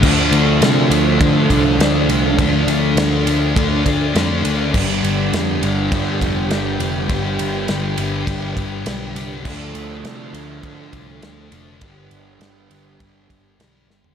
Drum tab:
CC |x---------------|----------------|x---------------|----------------|
RD |--x-x-x-x-x-x-x-|x-x-x-x-x-x-x-x-|--x-x-x-x-x-x-x-|x-x-x-x-x-x-x-x-|
SD |----o-------o---|----o-------o---|----o-------o---|----o-------o---|
FT |----------------|----------------|----------------|----------------|
BD |o-------o-o-----|o-------o-o-----|o-------o-o-----|o-------o-o-----|

CC |x---------------|----------------|
RD |--x-x-x-x-x-x-x-|x-x-x-x-x-x-x---|
SD |----o-------o---|----o-------o-o-|
FT |----------------|---------------o|
BD |o-------o-o-----|o-------o-o-----|